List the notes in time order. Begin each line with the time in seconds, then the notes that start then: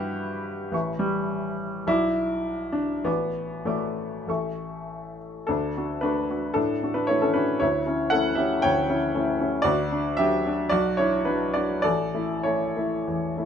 Already playing: G2 E4 F#4 G4 B4 E5 B5
0.72 A1 B4 E5 C#6
0.99 G3
1.87 B1 E4 F#4 D5 D6
2.72 D4
3.04 A1 B3 F#4 D5 D6
3.65 A1 A3 F#4 D5 D6
4.27 A1 A4 E5 C#6
5.47 D2 D4 A4
5.77 D4 F#4
6.01 A3 D4 F#4 B4
6.30 D4 F#4
6.54 A2 D4 A4
6.83 D4 F#4
6.94 D4 B4
7.07 A3 D4 E4 F#4 C#5
7.22 C#4 A4
7.33 D4 F#4 B4
7.60 D2 E4 C#5
7.87 C#4 E4
8.10 A3 C#4 E4 A4 F#5
8.35 C#4 E4 G4 E5
8.62 D2 C#5 G5
8.90 C#4 E4
9.14 A3 C#4 E4
9.40 C#4 E4
9.62 D2 F#4 D5
9.92 D4
10.17 F#3 D4 G4 E5
10.47 D4
10.69 B1 F#4 D5
10.97 D4 E4 C#5
11.25 F#3 D4 B4
11.54 D4 F#4 D5
11.82 A1 A4 D5
12.15 A3 E4
12.43 A3 E4 C#5
12.77 A3 E4
13.07 E2
13.37 A3 E4